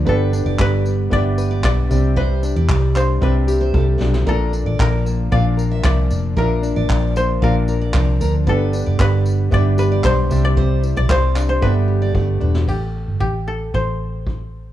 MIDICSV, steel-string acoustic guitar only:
0, 0, Header, 1, 2, 480
1, 0, Start_track
1, 0, Tempo, 525855
1, 59, Time_signature, 4, 2, 24, 8
1, 13443, End_track
2, 0, Start_track
2, 0, Title_t, "Steel-string acoustic guitar"
2, 0, Program_c, 0, 25
2, 59, Note_on_c, 0, 71, 103
2, 287, Note_off_c, 0, 71, 0
2, 420, Note_on_c, 0, 74, 76
2, 757, Note_off_c, 0, 74, 0
2, 1015, Note_on_c, 0, 76, 83
2, 1130, Note_off_c, 0, 76, 0
2, 1376, Note_on_c, 0, 74, 83
2, 1605, Note_off_c, 0, 74, 0
2, 1975, Note_on_c, 0, 72, 104
2, 2203, Note_off_c, 0, 72, 0
2, 2339, Note_on_c, 0, 74, 77
2, 2676, Note_off_c, 0, 74, 0
2, 2935, Note_on_c, 0, 76, 81
2, 3049, Note_off_c, 0, 76, 0
2, 3294, Note_on_c, 0, 72, 75
2, 3408, Note_off_c, 0, 72, 0
2, 3415, Note_on_c, 0, 69, 75
2, 3529, Note_off_c, 0, 69, 0
2, 3654, Note_on_c, 0, 67, 64
2, 3768, Note_off_c, 0, 67, 0
2, 3894, Note_on_c, 0, 70, 108
2, 4122, Note_off_c, 0, 70, 0
2, 4255, Note_on_c, 0, 74, 72
2, 4592, Note_off_c, 0, 74, 0
2, 4854, Note_on_c, 0, 77, 88
2, 4968, Note_off_c, 0, 77, 0
2, 5216, Note_on_c, 0, 76, 77
2, 5442, Note_off_c, 0, 76, 0
2, 5810, Note_on_c, 0, 70, 100
2, 6039, Note_off_c, 0, 70, 0
2, 6172, Note_on_c, 0, 74, 83
2, 6510, Note_off_c, 0, 74, 0
2, 6773, Note_on_c, 0, 77, 89
2, 6886, Note_off_c, 0, 77, 0
2, 7133, Note_on_c, 0, 74, 80
2, 7242, Note_off_c, 0, 74, 0
2, 7253, Note_on_c, 0, 74, 78
2, 7366, Note_off_c, 0, 74, 0
2, 7491, Note_on_c, 0, 70, 67
2, 7604, Note_off_c, 0, 70, 0
2, 7730, Note_on_c, 0, 71, 104
2, 7958, Note_off_c, 0, 71, 0
2, 8090, Note_on_c, 0, 74, 77
2, 8428, Note_off_c, 0, 74, 0
2, 8690, Note_on_c, 0, 76, 85
2, 8803, Note_off_c, 0, 76, 0
2, 9052, Note_on_c, 0, 74, 83
2, 9278, Note_off_c, 0, 74, 0
2, 9648, Note_on_c, 0, 72, 107
2, 9877, Note_off_c, 0, 72, 0
2, 10008, Note_on_c, 0, 74, 82
2, 10348, Note_off_c, 0, 74, 0
2, 10609, Note_on_c, 0, 76, 79
2, 10724, Note_off_c, 0, 76, 0
2, 10969, Note_on_c, 0, 74, 78
2, 11080, Note_off_c, 0, 74, 0
2, 11091, Note_on_c, 0, 74, 75
2, 11205, Note_off_c, 0, 74, 0
2, 11329, Note_on_c, 0, 71, 71
2, 11445, Note_off_c, 0, 71, 0
2, 13443, End_track
0, 0, End_of_file